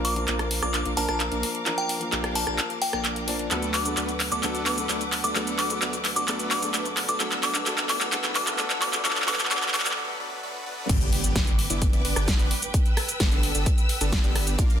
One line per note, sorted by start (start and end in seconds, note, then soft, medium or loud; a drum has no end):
0.00 0.26 A#1 medium
0.00 0.13 F3 loud
0.00 0.13 A#3 medium
0.00 0.25 A#3 medium
0.00 0.14 D4 medium
0.00 0.25 D4 medium
0.00 0.25 F4 loud
0.00 0.14 A#4 loud
0.00 3.47 A#4 medium
0.00 3.47 F5 medium
0.00 3.47 D6 medium
0.05 0.19 D6 medium
0.05 open hi-hat loud
0.15 0.94 F3 medium
0.15 0.94 A#3 medium
0.15 0.95 D4 medium
0.15 0.95 A#4 medium
0.15 closed hi-hat soft
0.28 0.60 A#1 loud
0.28 0.41 A#3 medium
0.28 0.41 D4 medium
0.28 0.41 F4 loud
0.28 clap medium
0.28 closed hi-hat medium
0.39 cross-stick medium
0.39 closed hi-hat soft
0.51 open hi-hat loud
0.62 0.83 A#1 loud
0.62 0.83 A#3 medium
0.62 0.83 D4 medium
0.62 0.83 F4 medium
0.62 0.77 D6 medium
0.62 cross-stick medium
0.62 closed hi-hat soft
0.74 clap medium
0.74 closed hi-hat medium
0.85 0.95 A#1 loud
0.85 0.94 A#3 medium
0.85 0.94 D4 medium
0.85 0.94 F4 medium
0.85 closed hi-hat soft
0.96 1.06 A#1 medium
0.96 1.11 F3 medium
0.96 1.11 A#3 medium
0.96 1.06 A#3 medium
0.96 1.06 D4 medium
0.96 1.12 D4 medium
0.96 1.06 A#4 medium
0.96 1.12 A#4 loud
0.96 1.04 A5 medium
0.96 open hi-hat loud
1.08 1.29 A#1 medium
1.08 1.22 A#3 medium
1.08 1.22 D4 medium
1.08 1.22 F4 medium
1.08 1.16 A5 medium
1.08 cross-stick medium
1.08 closed hi-hat soft
1.20 clap medium
1.20 closed hi-hat medium
1.31 1.43 A#1 medium
1.31 1.45 A#3 medium
1.31 1.45 D4 medium
1.31 1.45 A#4 loud
1.31 closed hi-hat soft
1.43 open hi-hat loud
1.55 closed hi-hat soft
1.66 1.98 F3 loud
1.66 1.98 A#3 medium
1.66 1.98 D4 medium
1.66 1.98 A#4 loud
1.66 clap medium
1.66 closed hi-hat medium
1.78 1.92 G5 medium
1.78 closed hi-hat soft
1.89 open hi-hat loud
2.00 2.78 F3 medium
2.00 2.79 A#3 medium
2.00 2.79 D4 medium
2.00 2.79 A#4 medium
2.00 closed hi-hat soft
2.12 2.45 A#1 loud
2.12 2.44 A#3 loud
2.12 2.44 D4 medium
2.12 2.44 G4 loud
2.12 clap medium
2.12 closed hi-hat medium
2.24 cross-stick medium
2.24 closed hi-hat soft
2.35 2.50 A5 medium
2.35 open hi-hat loud
2.47 2.58 A#1 loud
2.47 2.60 A#3 medium
2.47 2.60 D4 medium
2.47 2.60 G4 medium
2.47 cross-stick medium
2.47 closed hi-hat soft
2.59 clap medium
2.59 closed hi-hat medium
2.70 closed hi-hat soft
2.82 2.89 G5 medium
2.82 open hi-hat loud
2.93 3.49 A#1 medium
2.93 3.48 A#3 medium
2.93 3.48 D4 medium
2.93 3.48 A#4 medium
2.93 3.01 G5 medium
2.93 cross-stick medium
2.93 closed hi-hat soft
3.05 clap medium
3.05 closed hi-hat medium
3.16 closed hi-hat soft
3.27 3.48 F3 medium
3.27 3.48 A#3 medium
3.27 3.48 D4 medium
3.27 3.48 D5 medium
3.27 open hi-hat loud
3.39 closed hi-hat soft
3.50 3.95 D2 medium
3.50 3.83 F#3 medium
3.50 3.94 A3 medium
3.50 3.83 B3 medium
3.50 3.94 B3 medium
3.50 3.94 D4 medium
3.50 3.83 D4 medium
3.50 3.94 F#4 medium
3.50 3.83 A4 loud
3.50 3.94 B4 medium
3.50 7.16 B4 medium
3.50 7.16 F#5 medium
3.50 7.16 D6 medium
3.50 clap medium
3.50 closed hi-hat medium
3.50 riser medium
3.50 shaker medium
3.62 closed hi-hat soft
3.62 shaker soft
3.74 3.88 D6 medium
3.74 clap medium
3.74 open hi-hat loud
3.84 4.41 F#3 medium
3.84 4.41 B3 medium
3.84 4.42 D4 medium
3.84 4.42 A4 medium
3.84 closed hi-hat soft
3.84 shaker medium
3.97 4.29 D2 loud
3.97 4.11 A3 medium
3.97 4.11 B3 medium
3.97 4.11 D4 medium
3.97 4.11 F#4 medium
3.97 4.11 B4 loud
3.97 clap medium
3.97 closed hi-hat medium
3.97 shaker medium
4.09 closed hi-hat soft
4.09 shaker soft
4.20 clap medium
4.20 open hi-hat loud
4.32 4.41 D2 loud
4.32 4.41 A3 medium
4.32 4.41 B3 medium
4.32 4.41 D4 medium
4.32 4.41 F#4 medium
4.32 4.41 A4 medium
4.32 4.41 D6 medium
4.32 closed hi-hat soft
4.32 shaker medium
4.43 4.87 D2 medium
4.43 4.75 F#3 medium
4.43 4.87 A3 medium
4.43 4.87 B3 medium
4.43 4.75 B3 medium
4.43 4.87 D4 medium
4.43 4.75 D4 medium
4.43 4.87 F#4 medium
4.43 4.75 A4 loud
4.43 4.87 B4 loud
4.43 clap medium
4.43 closed hi-hat medium
4.43 shaker medium
4.55 closed hi-hat soft
4.55 shaker soft
4.66 4.81 D6 medium
4.66 clap medium
4.66 open hi-hat loud
4.77 5.33 F#3 medium
4.77 5.34 B3 medium
4.77 5.34 D4 medium
4.77 5.34 A4 medium
4.77 closed hi-hat soft
4.77 shaker medium
4.89 5.22 D2 loud
4.89 5.03 A3 medium
4.89 5.03 B3 medium
4.89 5.03 D4 medium
4.89 5.03 F#4 medium
4.89 5.03 B4 loud
4.89 clap medium
4.89 closed hi-hat medium
4.89 shaker medium
5.01 closed hi-hat soft
5.01 shaker soft
5.12 clap medium
5.12 open hi-hat loud
5.24 5.33 D2 loud
5.24 5.34 A3 medium
5.24 5.34 B3 medium
5.24 5.34 D4 medium
5.24 5.34 F#4 medium
5.24 5.34 A4 medium
5.24 5.34 D6 medium
5.24 closed hi-hat soft
5.24 shaker medium
5.35 5.79 D2 medium
5.35 5.67 F#3 medium
5.35 5.79 A3 medium
5.35 5.67 B3 medium
5.35 5.79 B3 medium
5.35 5.79 D4 medium
5.35 5.67 D4 medium
5.35 5.79 F#4 medium
5.35 5.68 A4 loud
5.35 5.79 B4 loud
5.35 clap medium
5.35 closed hi-hat medium
5.35 shaker medium
5.47 closed hi-hat soft
5.47 shaker soft
5.59 5.73 D6 medium
5.59 clap medium
5.59 open hi-hat medium
5.69 6.25 F#3 medium
5.69 6.26 B3 medium
5.69 6.26 D4 medium
5.69 6.27 A4 medium
5.69 closed hi-hat soft
5.69 shaker medium
5.82 6.14 D2 loud
5.82 5.95 A3 medium
5.82 5.95 B3 medium
5.82 5.95 D4 medium
5.82 5.95 F#4 medium
5.82 5.95 B4 loud
5.82 clap medium
5.82 closed hi-hat medium
5.82 shaker medium
5.93 closed hi-hat soft
5.93 shaker soft
6.05 clap medium
6.05 open hi-hat loud
6.16 6.25 D2 loud
6.16 6.26 A3 medium
6.16 6.26 B3 medium
6.16 6.26 D4 medium
6.16 6.26 F#4 medium
6.16 6.26 A4 medium
6.16 6.26 D6 medium
6.16 closed hi-hat soft
6.16 shaker medium
6.27 6.72 D2 medium
6.27 6.59 F#3 loud
6.27 6.71 A3 medium
6.27 6.60 B3 medium
6.27 6.71 B3 medium
6.27 6.71 D4 medium
6.27 6.60 D4 medium
6.27 6.71 F#4 medium
6.27 6.60 A4 loud
6.27 6.71 B4 loud
6.27 clap medium
6.27 closed hi-hat medium
6.27 shaker medium
6.39 closed hi-hat soft
6.39 shaker soft
6.51 6.65 D6 medium
6.51 clap medium
6.51 open hi-hat loud
6.61 7.18 F#3 medium
6.61 7.18 B3 medium
6.61 7.18 D4 medium
6.61 7.19 A4 medium
6.61 closed hi-hat soft
6.61 shaker medium
6.74 7.06 D2 loud
6.74 6.87 A3 loud
6.74 6.87 B3 medium
6.74 6.87 D4 medium
6.74 6.87 F#4 medium
6.74 6.87 B4 loud
6.74 clap medium
6.74 closed hi-hat medium
6.74 shaker medium
6.86 closed hi-hat soft
6.86 shaker soft
6.97 clap medium
6.97 open hi-hat loud
7.09 7.18 D2 loud
7.09 7.18 A3 medium
7.09 7.18 B3 medium
7.09 7.18 D4 medium
7.09 7.18 F#4 medium
7.09 7.18 A4 medium
7.09 7.18 D6 medium
7.09 closed hi-hat soft
7.09 shaker medium
7.19 7.64 C2 loud
7.19 7.52 F#3 loud
7.19 7.64 A3 medium
7.19 7.52 B3 medium
7.19 7.64 B3 medium
7.19 7.64 D4 medium
7.19 7.52 D4 medium
7.19 7.64 F#4 medium
7.19 7.52 A4 loud
7.19 7.64 B4 loud
7.19 9.94 E6 medium
7.19 clap medium
7.19 closed hi-hat medium
7.19 shaker medium
7.32 clap medium
7.32 closed hi-hat soft
7.32 shaker soft
7.43 7.58 D6 medium
7.43 clap medium
7.43 open hi-hat loud
7.53 7.64 F#3 medium
7.53 7.64 B3 medium
7.53 7.65 D4 medium
7.53 7.65 A4 medium
7.53 clap medium
7.53 closed hi-hat soft
7.53 shaker medium
7.66 8.10 C2 loud
7.66 7.98 F#3 medium
7.66 8.10 A3 loud
7.66 7.98 B3 medium
7.66 8.10 B3 medium
7.66 8.10 D4 medium
7.66 7.98 D4 medium
7.66 8.10 F#4 medium
7.66 7.99 A4 loud
7.66 8.10 B4 loud
7.66 clap medium
7.66 closed hi-hat medium
7.66 shaker medium
7.78 clap medium
7.78 closed hi-hat soft
7.78 shaker soft
7.89 8.04 D6 medium
7.89 clap medium
7.89 open hi-hat loud
8.00 8.10 F#3 medium
8.00 8.11 B3 medium
8.00 8.11 D4 medium
8.00 8.11 A4 medium
8.00 clap medium
8.00 closed hi-hat soft
8.00 shaker medium
8.12 8.56 C2 loud
8.12 8.44 F#3 loud
8.12 8.56 A3 loud
8.12 8.44 B3 medium
8.12 8.56 B3 medium
8.12 8.56 D4 medium
8.12 8.44 D4 medium
8.12 8.56 F#4 medium
8.12 8.45 A4 loud
8.12 8.56 B4 loud
8.12 clap loud
8.12 closed hi-hat medium
8.12 shaker medium
8.24 clap medium
8.24 closed hi-hat soft
8.24 shaker soft
8.35 8.50 D6 medium
8.35 clap loud
8.35 open hi-hat loud
8.46 8.56 F#3 medium
8.46 8.57 B3 medium
8.46 8.57 D4 medium
8.46 8.57 A4 medium
8.46 clap medium
8.46 closed hi-hat soft
8.46 shaker medium
8.58 9.02 C2 loud
8.58 8.90 F#3 loud
8.58 9.02 A3 loud
8.58 8.90 B3 medium
8.58 9.02 B3 medium
8.58 9.02 D4 medium
8.58 8.91 D4 medium
8.58 9.02 F#4 medium
8.58 8.91 A4 loud
8.58 9.02 B4 loud
8.58 clap loud
8.58 closed hi-hat medium
8.58 shaker medium
8.70 clap medium
8.70 closed hi-hat soft
8.70 shaker soft
8.82 8.96 D6 medium
8.82 clap medium
8.82 open hi-hat loud
8.92 9.02 F#3 medium
8.92 9.03 B3 medium
8.92 9.03 D4 medium
8.92 9.04 A4 medium
8.92 clap medium
8.92 closed hi-hat soft
8.92 shaker medium
9.04 9.26 C2 loud
9.04 9.26 F#3 loud
9.04 9.26 A3 loud
9.04 9.26 B3 loud
9.04 9.26 B3 medium
9.04 9.26 D4 medium
9.04 9.26 F#4 medium
9.04 9.26 A4 loud
9.04 9.26 B4 loud
9.04 9.19 D6 medium
9.04 clap loud
9.04 closed hi-hat medium
9.04 shaker medium
9.11 clap medium
9.16 clap medium
9.16 closed hi-hat soft
9.16 shaker soft
9.22 clap medium
9.27 9.49 C2 loud
9.27 9.49 F#3 loud
9.27 9.49 A3 loud
9.27 9.49 B3 medium
9.27 9.49 D4 medium
9.27 9.49 F#4 medium
9.27 9.49 A4 loud
9.27 9.49 B4 loud
9.27 9.42 D6 medium
9.27 clap loud
9.27 open hi-hat loud
9.34 clap medium
9.40 clap medium
9.40 closed hi-hat soft
9.40 shaker medium
9.45 clap medium
9.50 9.72 C2 loud
9.50 9.72 F#3 loud
9.50 9.72 A3 loud
9.50 9.72 B3 medium
9.50 9.72 D4 medium
9.50 9.72 F#4 medium
9.50 9.72 A4 loud
9.50 9.72 B4 loud
9.50 9.65 D6 medium
9.50 clap loud
9.50 closed hi-hat medium
9.50 shaker medium
9.57 clap medium
9.63 clap medium
9.63 closed hi-hat soft
9.63 shaker soft
9.68 clap medium
9.73 9.95 C2 loud
9.73 9.95 F#3 loud
9.73 9.95 A3 loud
9.73 9.95 B3 medium
9.73 9.95 D4 medium
9.73 9.95 F#4 medium
9.73 9.96 A4 loud
9.73 9.95 B4 loud
9.73 9.88 D6 medium
9.73 clap loud
9.73 open hi-hat loud
9.80 clap loud
9.86 clap medium
9.86 closed hi-hat soft
9.86 shaker medium
9.91 clap medium
9.97 10.18 A3 loud
9.97 10.18 B3 medium
9.97 10.18 D4 medium
9.97 10.18 F#4 loud
9.97 10.18 B4 loud
10.20 10.41 A3 medium
10.20 10.41 B3 medium
10.20 10.41 D4 medium
10.20 10.41 F#4 medium
10.20 10.41 B4 loud
10.43 10.64 A3 loud
10.43 10.64 B3 medium
10.43 10.64 D4 medium
10.43 10.64 F#4 loud
10.43 10.64 B4 loud
10.66 10.87 A3 loud
10.66 10.88 B3 loud
10.66 10.88 D4 medium
10.66 10.88 F#4 medium
10.66 10.88 B4 loud
10.89 11.33 G1 loud
10.89 11.33 B3 loud
10.89 11.33 D4 medium
10.89 14.55 B4 medium
10.89 14.55 G5 medium
10.89 12.72 D6 medium
10.89 kick loud
10.89 closed hi-hat medium
10.89 crash loud
10.89 impact medium
10.89 shaker medium
11.01 closed hi-hat soft
11.01 shaker soft
11.13 open hi-hat loud
11.24 closed hi-hat soft
11.24 shaker medium
11.36 11.68 G1 loud
11.36 11.49 B3 loud
11.36 11.49 D4 medium
11.36 11.49 G4 loud
11.36 kick loud
11.36 snare loud
11.36 closed hi-hat medium
11.36 shaker medium
11.47 closed hi-hat soft
11.47 shaker soft
11.59 open hi-hat loud
11.70 11.91 G1 loud
11.70 11.90 B3 medium
11.70 11.90 D4 medium
11.70 11.90 E4 medium
11.70 closed hi-hat soft
11.70 shaker medium
11.82 kick loud
11.82 closed hi-hat loud
11.82 shaker medium
11.93 12.03 G1 loud
11.93 12.02 B3 medium
11.93 12.02 D4 medium
11.93 12.02 E4 medium
11.93 closed hi-hat soft
11.93 shaker soft
12.05 12.14 G1 loud
12.05 12.14 B3 medium
12.05 12.14 D4 medium
12.05 12.14 B4 medium
12.05 open hi-hat loud
12.16 12.37 G1 loud
12.16 12.30 B3 medium
12.16 12.30 D4 medium
12.16 12.30 G4 medium
12.16 cross-stick medium
12.16 closed hi-hat soft
12.16 shaker medium
12.28 kick loud
12.28 snare loud
12.28 closed hi-hat loud
12.28 shaker medium
12.39 12.51 G1 loud
12.39 12.53 B3 medium
12.39 12.53 D4 medium
12.39 12.53 B4 loud
12.39 closed hi-hat soft
12.39 shaker soft
12.51 open hi-hat loud
12.62 closed hi-hat soft
12.62 shaker medium
12.74 14.57 E6 medium
12.74 kick loud
12.74 closed hi-hat medium
12.74 shaker medium
12.86 closed hi-hat soft
12.86 shaker soft
12.97 cross-stick medium
12.97 open hi-hat loud
13.09 closed hi-hat soft
13.09 shaker medium
13.20 13.53 G1 loud
13.20 13.52 B3 loud
13.20 13.52 D4 medium
13.20 13.52 A4 loud
13.20 kick loud
13.20 snare loud
13.20 closed hi-hat medium
13.20 shaker medium
13.32 closed hi-hat soft
13.32 shaker soft
13.43 open hi-hat loud
13.55 13.66 G1 loud
13.55 13.68 B3 medium
13.55 13.68 D4 medium
13.55 13.68 A4 medium
13.55 closed hi-hat soft
13.55 shaker medium
13.66 kick loud
13.66 closed hi-hat loud
13.66 shaker medium
13.78 closed hi-hat soft
13.78 shaker soft
13.89 open hi-hat loud
14.01 14.22 G1 loud
14.01 14.21 B3 medium
14.01 14.21 D4 medium
14.01 14.21 A4 loud
14.01 closed hi-hat soft
14.01 shaker medium
14.12 kick loud
14.12 snare loud
14.12 closed hi-hat medium
14.12 shaker medium
14.24 14.56 G1 loud
14.24 14.56 B3 medium
14.24 14.56 D4 medium
14.24 14.56 G4 medium
14.24 closed hi-hat soft
14.24 shaker soft
14.36 cross-stick medium
14.36 open hi-hat loud
14.47 closed hi-hat soft
14.47 shaker medium
14.59 14.80 A#1 loud
14.59 14.80 A#3 loud
14.59 14.80 D4 medium
14.59 14.80 F4 loud
14.59 14.80 A#4 medium
14.59 14.80 F5 medium
14.59 14.80 D6 medium
14.59 kick loud
14.59 closed hi-hat medium
14.59 shaker medium
14.70 closed hi-hat soft
14.70 shaker soft